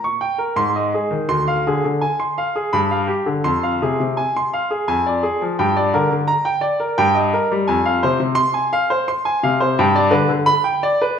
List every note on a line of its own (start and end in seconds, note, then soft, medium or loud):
0.04 0.22 C#6 medium
0.21 0.39 G5 medium
0.38 0.56 A#4 medium
0.56 0.91 G#2 medium
0.56 0.75 C6 medium
0.76 0.94 D#5 medium
0.94 1.12 G#4 medium
1.11 1.28 D#3 medium
1.28 1.63 D2 medium
1.28 1.47 C6 medium
1.48 1.66 F5 medium
1.67 1.83 D3 medium
1.67 1.84 G#4 medium
1.84 2.02 D3 medium
2.01 2.20 G#5 medium
2.20 2.38 C6 medium
2.38 2.56 F5 medium
2.56 2.73 G#4 medium
2.73 3.08 G2 medium
2.73 2.91 B5 medium
2.91 3.10 F5 medium
3.07 3.27 G4 medium
3.26 3.45 D3 medium
3.44 3.80 F2 medium
3.44 3.64 C6 medium
3.63 3.82 F5 medium
3.82 3.99 C3 medium
3.82 4.00 G#4 medium
4.00 4.18 C3 medium
4.17 4.35 G#5 medium
4.36 4.54 C6 medium
4.53 4.71 F5 medium
4.71 4.87 G#4 medium
4.88 5.21 F2 medium
4.88 5.06 G#5 medium
5.06 5.24 D5 medium
5.23 5.41 G#4 medium
5.42 5.58 F3 medium
5.59 5.92 G2 medium
5.59 5.77 G5 medium
5.77 5.94 D5 medium
5.94 6.09 D3 medium
5.94 6.11 A#4 medium
6.11 6.29 D3 medium
6.28 6.46 A#5 medium
6.45 6.63 G5 medium
6.61 6.80 D5 medium
6.80 6.97 A#4 medium
6.98 7.32 G2 medium
6.98 7.16 G5 medium
7.15 7.33 D#5 medium
7.33 7.51 A#4 medium
7.52 7.68 G3 medium
7.68 8.01 F2 medium
7.68 7.86 G#5 medium
7.86 8.03 F5 medium
8.03 8.18 C3 medium
8.03 8.20 C5 medium
8.20 8.38 C3 medium
8.35 8.54 C6 loud
8.54 8.72 G#5 medium
8.73 8.90 F5 medium
8.90 9.08 C5 medium
9.08 9.26 C6 medium
9.25 9.43 G#5 medium
9.43 9.77 C3 medium
9.43 9.61 F5 medium
9.60 9.77 C5 medium
9.79 10.12 G2 medium
9.79 9.96 G5 medium
9.95 10.13 D5 medium
10.11 10.27 D3 medium
10.11 10.30 B4 medium
10.29 10.48 D3 medium
10.46 10.65 B5 loud
10.64 10.83 G5 medium
10.83 11.02 D5 medium
11.02 11.19 B4 medium